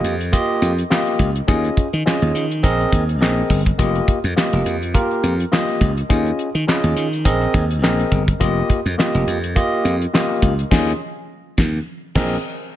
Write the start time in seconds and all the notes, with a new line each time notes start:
Already playing: A#3 F4 G4 D#5
0.04 F2, closed hi-hat
0.21 closed hi-hat
0.32 A#3 F4 G4 D#5, kick, closed hi-hat
0.62 F2, closed hi-hat
0.78 closed hi-hat
0.90 A#3 F4 G4 D#5, snare, clap
1.07 closed hi-hat
1.19 C#2, kick, closed hi-hat
1.36 closed hi-hat
1.48 D#2 C#4 F4 G#4 D#5, kick, closed hi-hat
1.65 closed hi-hat
1.77 kick, closed hi-hat
1.93 D#3, closed hi-hat
2.05 C#4 F4 G#4 D#5, snare, clap
2.22 D#2
2.34 D#3, closed hi-hat
2.51 closed hi-hat
2.63 A#1 C4 G#4 A#4 D#5, kick, closed hi-hat
2.80 closed hi-hat
2.93 D#2, kick, closed hi-hat
3.09 closed hi-hat
3.21 A#1 C4 G#4 A#4 D#5, snare, clap
3.50 G1, kick, open hi-hat
3.66 kick, closed hi-hat
3.78 F1 A#3 F4 G4 D#5, kick, closed hi-hat
3.95 closed hi-hat
4.08 kick, closed hi-hat
4.24 F2, closed hi-hat
4.36 A#3 F4 G4 D#5, snare, clap
4.53 F1, closed hi-hat
4.66 F2, closed hi-hat
4.82 closed hi-hat
4.94 A#3 F4 G4 A#4, kick, closed hi-hat
5.11 closed hi-hat
5.23 F2, closed hi-hat
5.40 closed hi-hat
5.52 A#3 F4 G4 D#5, snare, clap
5.69 closed hi-hat
5.81 C#2, kick, closed hi-hat
5.97 closed hi-hat
6.09 D#2 C#4 F4 G#4 D#5, kick, closed hi-hat
6.26 closed hi-hat
6.39 closed hi-hat
6.55 D#3, closed hi-hat
6.67 C#4 F4 G#4 D#5, snare, clap
6.84 D#2, closed hi-hat
6.96 D#3, closed hi-hat
7.13 closed hi-hat
7.25 A#1 C4 G#4 A#4 D#5, kick, closed hi-hat
7.42 closed hi-hat
7.54 D#2, kick, closed hi-hat
7.71 closed hi-hat
7.83 A#1 C4 G#4 A#4 D#5, snare, clap
7.99 closed hi-hat
8.12 G1, kick, closed hi-hat
8.28 kick, closed hi-hat
8.40 F1 A#3 F4 G4 D#5, kick, closed hi-hat
8.70 kick, closed hi-hat
8.86 F2, closed hi-hat
8.98 A#3 F4 G4 D#5, snare, clap
9.14 F1, closed hi-hat
9.27 F2, closed hi-hat
9.44 closed hi-hat
9.56 A#3 F4 G4 D#5, kick, closed hi-hat
9.85 F2, closed hi-hat
10.02 closed hi-hat
10.13 A#3 F4 G4 D#5, snare, clap
10.42 C#2, kick, closed hi-hat
10.59 closed hi-hat
10.71 D#2 C#4 F4 G#4 D#5, kick, snare, crash
11.58 D#2, kick, snare
12.15 A#1 C4 G#4 A#4 D#5, kick, snare, crash